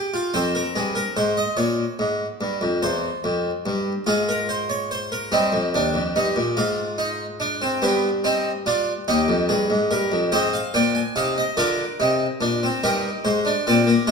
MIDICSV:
0, 0, Header, 1, 2, 480
1, 0, Start_track
1, 0, Key_signature, -4, "minor"
1, 0, Tempo, 832178
1, 197, Time_signature, 6, 3, 24, 8
1, 8139, End_track
2, 0, Start_track
2, 0, Title_t, "Harpsichord"
2, 0, Program_c, 0, 6
2, 0, Note_on_c, 0, 67, 56
2, 0, Note_on_c, 0, 75, 71
2, 75, Note_off_c, 0, 67, 0
2, 79, Note_on_c, 0, 65, 62
2, 177, Note_off_c, 0, 75, 0
2, 194, Note_off_c, 0, 65, 0
2, 195, Note_on_c, 0, 60, 64
2, 197, Note_on_c, 0, 41, 75
2, 197, Note_on_c, 0, 72, 66
2, 313, Note_off_c, 0, 72, 0
2, 317, Note_on_c, 0, 70, 57
2, 345, Note_off_c, 0, 41, 0
2, 433, Note_off_c, 0, 70, 0
2, 436, Note_on_c, 0, 43, 78
2, 437, Note_on_c, 0, 68, 64
2, 549, Note_on_c, 0, 70, 58
2, 552, Note_off_c, 0, 68, 0
2, 584, Note_off_c, 0, 43, 0
2, 668, Note_off_c, 0, 70, 0
2, 672, Note_on_c, 0, 72, 62
2, 673, Note_on_c, 0, 44, 75
2, 790, Note_off_c, 0, 72, 0
2, 792, Note_on_c, 0, 75, 59
2, 822, Note_off_c, 0, 44, 0
2, 904, Note_on_c, 0, 73, 64
2, 905, Note_on_c, 0, 46, 76
2, 909, Note_off_c, 0, 75, 0
2, 1057, Note_off_c, 0, 46, 0
2, 1150, Note_on_c, 0, 44, 69
2, 1300, Note_off_c, 0, 44, 0
2, 1389, Note_on_c, 0, 43, 70
2, 1507, Note_off_c, 0, 43, 0
2, 1507, Note_on_c, 0, 41, 77
2, 1606, Note_off_c, 0, 73, 0
2, 1626, Note_off_c, 0, 41, 0
2, 1630, Note_on_c, 0, 40, 82
2, 1630, Note_on_c, 0, 72, 73
2, 1779, Note_off_c, 0, 40, 0
2, 1870, Note_on_c, 0, 41, 83
2, 2019, Note_off_c, 0, 41, 0
2, 2109, Note_on_c, 0, 43, 83
2, 2259, Note_off_c, 0, 43, 0
2, 2328, Note_off_c, 0, 60, 0
2, 2329, Note_off_c, 0, 72, 0
2, 2345, Note_on_c, 0, 65, 70
2, 2347, Note_on_c, 0, 68, 62
2, 2348, Note_on_c, 0, 44, 81
2, 2466, Note_off_c, 0, 68, 0
2, 2473, Note_on_c, 0, 70, 68
2, 2589, Note_off_c, 0, 70, 0
2, 2590, Note_on_c, 0, 72, 67
2, 2708, Note_off_c, 0, 72, 0
2, 2709, Note_on_c, 0, 73, 68
2, 2828, Note_off_c, 0, 73, 0
2, 2834, Note_on_c, 0, 72, 66
2, 2950, Note_off_c, 0, 72, 0
2, 2953, Note_on_c, 0, 70, 69
2, 3049, Note_off_c, 0, 65, 0
2, 3050, Note_off_c, 0, 44, 0
2, 3068, Note_on_c, 0, 43, 75
2, 3068, Note_on_c, 0, 63, 73
2, 3069, Note_on_c, 0, 60, 85
2, 3070, Note_off_c, 0, 70, 0
2, 3186, Note_on_c, 0, 41, 69
2, 3188, Note_off_c, 0, 43, 0
2, 3220, Note_off_c, 0, 60, 0
2, 3307, Note_off_c, 0, 41, 0
2, 3313, Note_on_c, 0, 39, 72
2, 3314, Note_on_c, 0, 62, 85
2, 3428, Note_on_c, 0, 41, 67
2, 3431, Note_off_c, 0, 39, 0
2, 3464, Note_off_c, 0, 62, 0
2, 3546, Note_off_c, 0, 63, 0
2, 3548, Note_off_c, 0, 41, 0
2, 3553, Note_on_c, 0, 63, 89
2, 3554, Note_on_c, 0, 43, 74
2, 3669, Note_on_c, 0, 46, 69
2, 3671, Note_off_c, 0, 43, 0
2, 3702, Note_off_c, 0, 63, 0
2, 3788, Note_off_c, 0, 46, 0
2, 3790, Note_on_c, 0, 65, 87
2, 3791, Note_on_c, 0, 44, 71
2, 4028, Note_on_c, 0, 63, 84
2, 4179, Note_off_c, 0, 63, 0
2, 4268, Note_on_c, 0, 62, 81
2, 4388, Note_off_c, 0, 62, 0
2, 4394, Note_on_c, 0, 60, 85
2, 4492, Note_off_c, 0, 44, 0
2, 4494, Note_off_c, 0, 65, 0
2, 4511, Note_off_c, 0, 60, 0
2, 4511, Note_on_c, 0, 59, 91
2, 4513, Note_on_c, 0, 43, 75
2, 4514, Note_on_c, 0, 67, 76
2, 4662, Note_off_c, 0, 59, 0
2, 4664, Note_off_c, 0, 67, 0
2, 4754, Note_on_c, 0, 60, 90
2, 4757, Note_on_c, 0, 63, 75
2, 4904, Note_off_c, 0, 60, 0
2, 4906, Note_off_c, 0, 63, 0
2, 4997, Note_on_c, 0, 62, 88
2, 4997, Note_on_c, 0, 65, 70
2, 5146, Note_off_c, 0, 62, 0
2, 5146, Note_off_c, 0, 65, 0
2, 5213, Note_off_c, 0, 43, 0
2, 5238, Note_on_c, 0, 63, 82
2, 5238, Note_on_c, 0, 67, 69
2, 5240, Note_on_c, 0, 39, 67
2, 5355, Note_off_c, 0, 39, 0
2, 5355, Note_on_c, 0, 41, 65
2, 5387, Note_off_c, 0, 67, 0
2, 5472, Note_off_c, 0, 41, 0
2, 5474, Note_on_c, 0, 68, 69
2, 5475, Note_on_c, 0, 43, 61
2, 5593, Note_off_c, 0, 43, 0
2, 5595, Note_on_c, 0, 44, 63
2, 5625, Note_off_c, 0, 68, 0
2, 5714, Note_off_c, 0, 44, 0
2, 5715, Note_on_c, 0, 43, 64
2, 5715, Note_on_c, 0, 70, 68
2, 5834, Note_off_c, 0, 43, 0
2, 5836, Note_on_c, 0, 41, 70
2, 5866, Note_off_c, 0, 70, 0
2, 5939, Note_off_c, 0, 63, 0
2, 5953, Note_on_c, 0, 72, 61
2, 5954, Note_on_c, 0, 60, 67
2, 5954, Note_on_c, 0, 75, 61
2, 5955, Note_off_c, 0, 41, 0
2, 5957, Note_on_c, 0, 44, 58
2, 6074, Note_off_c, 0, 75, 0
2, 6076, Note_on_c, 0, 77, 54
2, 6105, Note_off_c, 0, 60, 0
2, 6107, Note_off_c, 0, 44, 0
2, 6195, Note_off_c, 0, 77, 0
2, 6196, Note_on_c, 0, 46, 58
2, 6196, Note_on_c, 0, 62, 68
2, 6196, Note_on_c, 0, 79, 60
2, 6315, Note_off_c, 0, 79, 0
2, 6316, Note_on_c, 0, 80, 53
2, 6346, Note_off_c, 0, 46, 0
2, 6347, Note_off_c, 0, 62, 0
2, 6434, Note_off_c, 0, 80, 0
2, 6436, Note_on_c, 0, 63, 63
2, 6437, Note_on_c, 0, 77, 60
2, 6438, Note_on_c, 0, 48, 58
2, 6555, Note_off_c, 0, 77, 0
2, 6563, Note_on_c, 0, 75, 57
2, 6586, Note_off_c, 0, 63, 0
2, 6588, Note_off_c, 0, 48, 0
2, 6655, Note_off_c, 0, 72, 0
2, 6674, Note_on_c, 0, 70, 55
2, 6675, Note_on_c, 0, 50, 58
2, 6675, Note_on_c, 0, 65, 63
2, 6676, Note_on_c, 0, 74, 53
2, 6678, Note_off_c, 0, 75, 0
2, 6826, Note_off_c, 0, 50, 0
2, 6826, Note_off_c, 0, 65, 0
2, 6921, Note_on_c, 0, 48, 58
2, 6921, Note_on_c, 0, 63, 65
2, 7069, Note_off_c, 0, 48, 0
2, 7069, Note_off_c, 0, 63, 0
2, 7156, Note_on_c, 0, 62, 60
2, 7157, Note_on_c, 0, 46, 57
2, 7274, Note_off_c, 0, 62, 0
2, 7287, Note_on_c, 0, 60, 64
2, 7306, Note_off_c, 0, 46, 0
2, 7374, Note_off_c, 0, 70, 0
2, 7375, Note_off_c, 0, 74, 0
2, 7399, Note_off_c, 0, 60, 0
2, 7403, Note_on_c, 0, 70, 60
2, 7404, Note_on_c, 0, 63, 65
2, 7404, Note_on_c, 0, 67, 66
2, 7405, Note_on_c, 0, 43, 68
2, 7550, Note_off_c, 0, 70, 0
2, 7551, Note_off_c, 0, 43, 0
2, 7641, Note_on_c, 0, 44, 70
2, 7641, Note_on_c, 0, 72, 61
2, 7749, Note_off_c, 0, 63, 0
2, 7758, Note_on_c, 0, 62, 61
2, 7788, Note_off_c, 0, 44, 0
2, 7789, Note_off_c, 0, 72, 0
2, 7874, Note_off_c, 0, 62, 0
2, 7885, Note_on_c, 0, 46, 65
2, 7886, Note_on_c, 0, 60, 62
2, 7888, Note_on_c, 0, 74, 60
2, 7998, Note_off_c, 0, 60, 0
2, 8001, Note_on_c, 0, 58, 64
2, 8031, Note_off_c, 0, 46, 0
2, 8033, Note_off_c, 0, 74, 0
2, 8097, Note_off_c, 0, 67, 0
2, 8115, Note_off_c, 0, 58, 0
2, 8118, Note_on_c, 0, 56, 61
2, 8118, Note_on_c, 0, 68, 65
2, 8118, Note_on_c, 0, 72, 61
2, 8119, Note_on_c, 0, 48, 70
2, 8139, Note_off_c, 0, 48, 0
2, 8139, Note_off_c, 0, 56, 0
2, 8139, Note_off_c, 0, 68, 0
2, 8139, Note_off_c, 0, 72, 0
2, 8139, End_track
0, 0, End_of_file